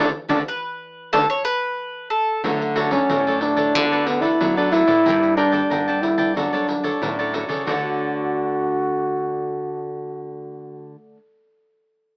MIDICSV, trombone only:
0, 0, Header, 1, 2, 480
1, 0, Start_track
1, 0, Key_signature, 2, "major"
1, 0, Tempo, 654308
1, 1791, Time_signature, 4, 2, 24, 8
1, 8926, End_track
2, 0, Start_track
2, 0, Title_t, "Trombone"
2, 0, Program_c, 0, 57
2, 6, Note_on_c, 0, 62, 85
2, 59, Note_off_c, 0, 62, 0
2, 219, Note_on_c, 0, 62, 93
2, 281, Note_off_c, 0, 62, 0
2, 835, Note_on_c, 0, 62, 90
2, 892, Note_off_c, 0, 62, 0
2, 1792, Note_on_c, 0, 57, 76
2, 2126, Note_off_c, 0, 57, 0
2, 2141, Note_on_c, 0, 61, 94
2, 2480, Note_off_c, 0, 61, 0
2, 2509, Note_on_c, 0, 62, 97
2, 2987, Note_on_c, 0, 59, 82
2, 2998, Note_off_c, 0, 62, 0
2, 3092, Note_on_c, 0, 64, 94
2, 3103, Note_off_c, 0, 59, 0
2, 3342, Note_off_c, 0, 64, 0
2, 3352, Note_on_c, 0, 62, 87
2, 3458, Note_off_c, 0, 62, 0
2, 3462, Note_on_c, 0, 64, 107
2, 3918, Note_off_c, 0, 64, 0
2, 3939, Note_on_c, 0, 62, 95
2, 4414, Note_on_c, 0, 64, 81
2, 4425, Note_off_c, 0, 62, 0
2, 4658, Note_off_c, 0, 64, 0
2, 4663, Note_on_c, 0, 62, 78
2, 5358, Note_off_c, 0, 62, 0
2, 5625, Note_on_c, 0, 66, 80
2, 8032, Note_off_c, 0, 66, 0
2, 8926, End_track
0, 0, End_of_file